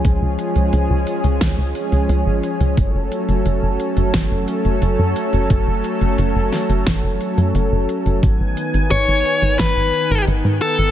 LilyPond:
<<
  \new Staff \with { instrumentName = "Lead electric guitar" } { \time 4/4 \key fis \dorian \tempo 4 = 88 r1 | r1 | r1 | r4 cis''4 b'4 r8 a'8 | }
  \new Staff \with { instrumentName = "Analog synth pad" } { \time 4/4 \key fis \dorian << { <eis gis gis'>1 | <fis a a'>1~ | <fis a a'>1 | <dis gis''>1 | } \\ { cis'1~ | cis'1~ | cis'1 | b1 | } >> }
  \new Staff \with { instrumentName = "Analog synth bass" } { \clef bass \time 4/4 \key fis \dorian cis,16 cis,16 r16 cis,16 cis,16 cis,16 r16 cis,16 cis,16 cis,16 r16 cis,16 cis,16 gis,,16 r16 cis,16 | fis,,16 fis,,16 r16 fis,,16 fis,,16 fis,,16 r16 fis,,16 fis,,16 fis,,16 r16 fis,,16 fis,,16 fis,16 r16 fis,,16 | fis,,16 fis,,16 r16 fis,,16 fis,,16 fis,,16 r16 fis,,16 fis,,16 fis,,16 r16 fis,16 fis,,16 fis,,16 r16 fis,,16 | gis,,16 gis,,16 r16 gis,,16 gis,,16 gis,,16 r16 gis,,16 gis,,16 gis,,16 r16 gis,,16 gis,,16 gis,16 r16 gis,,16 | }
  \new DrumStaff \with { instrumentName = "Drums" } \drummode { \time 4/4 <hh bd>8 hh16 hh16 hh8 hh16 hh16 <hh bd sn>8 hh16 hh16 hh8 hh16 hh16 | <hh bd>8 hh16 hh16 hh8 hh16 hh16 <hh bd sn>8 hh16 hh16 hh8 hh16 hh16 | <hh bd>8 hh16 hh16 hh8 <hh sn>16 hh16 <hh bd sn>8 hh16 hh16 hh8 hh16 hh16 | <hh bd>8 hh16 hh16 hh8 hh16 hh16 <hh bd sn>8 hh16 hh16 hh8 hh16 hh16 | }
>>